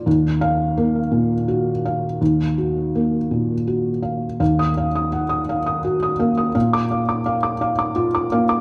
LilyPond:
<<
  \new Staff \with { instrumentName = "Felt piano" } { \time 6/8 \key ees \minor \tempo 4. = 56 << { r8 f''8. r4. r16 | r2. | r16 ees'''8 r2 r16 | r16 d'''8 r2 r16 | } \\ { r2. | r2. | f''8 f''16 ees'''16 ges''16 ees'''16 f''16 ees'''16 ges'16 ees'''16 f''16 ees'''16 | f''8 f''16 d'''16 f''16 d'''16 f''16 d'''16 f'16 d'''16 f''16 d'''16 | } >> }
  \new Staff \with { instrumentName = "Felt piano" } { \time 6/8 \key ees \minor ees,4 bes8 bes,8 ges'8 f''8 | ees,8 ges'8 bes8 bes,8 ges'8 f''8 | ees,2~ ees,8 bes8 | bes,2~ bes,8 bes8 | }
>>